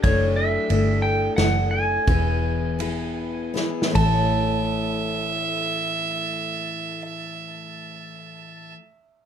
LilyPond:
<<
  \new Staff \with { instrumentName = "Pedal steel guitar" } { \time 3/4 \key a \major \tempo 4 = 73 cis''8 e''4 g''8 fis''8 gis''8~ | gis''2 r8 a''8~ | a''2.~ | a''2. | }
  \new Staff \with { instrumentName = "Fiddle" } { \time 3/4 \key a \major r2. | r2 r8 e''8~ | e''2.~ | e''2. | }
  \new Staff \with { instrumentName = "Steel-string acoustic guitar" } { \time 3/4 \key a \major <fis a d' e' a'>4 <a d' e' a'>4 <a d' e' a'>4 | <e b e' gis' b'>4 <b e' gis' b'>4 <b e' gis' b'>8 <a, e a e' a' cis''>8~ | <a, e a e' a' cis''>2.~ | <a, e a e' a' cis''>2. | }
  \new Staff \with { instrumentName = "Fingered electric bass" } { \clef bass \time 3/4 \key a \major fis,,4 g,,4 fis,,4 | e,,2~ e,,8 a,,8~ | a,,2.~ | a,,2. | }
  \new DrumStaff \with { instrumentName = "Drums" } \drummode { \time 3/4 <bd cymr>4 cymr4 <cymr sn>4 | <bd cymr>4 cymr4 \tuplet 3/2 { sn16 r16 sn16 <bd cymr>16 r16 r16 } | r4 r4 r4 | r4 r4 r4 | }
>>